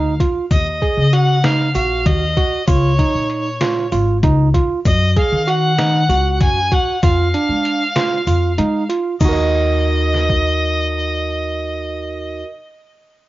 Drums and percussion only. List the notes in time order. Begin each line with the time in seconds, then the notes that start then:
0.20 kick, closed hi-hat, shaker
0.51 kick, closed hi-hat, shaker
0.82 kick, closed hi-hat
1.13 closed hi-hat
1.44 snare, closed hi-hat
1.75 closed hi-hat, shaker
2.06 kick, closed hi-hat
2.37 kick, closed hi-hat
2.68 kick, closed hi-hat, shaker
2.99 kick, closed hi-hat
3.30 closed hi-hat
3.61 snare, closed hi-hat
3.92 closed hi-hat, shaker
4.23 kick, closed hi-hat
4.54 kick, closed hi-hat
4.85 kick, closed hi-hat, shaker
5.16 kick, closed hi-hat
5.48 closed hi-hat
5.78 snare, closed hi-hat
6.10 closed hi-hat, shaker
6.40 kick, closed hi-hat
6.72 kick, closed hi-hat
7.03 kick, closed hi-hat, shaker
7.34 closed hi-hat
7.65 closed hi-hat
7.96 snare, closed hi-hat
8.27 closed hi-hat, shaker
8.58 closed hi-hat
8.90 closed hi-hat
9.20 kick, crash, shaker
10.14 snare
10.29 kick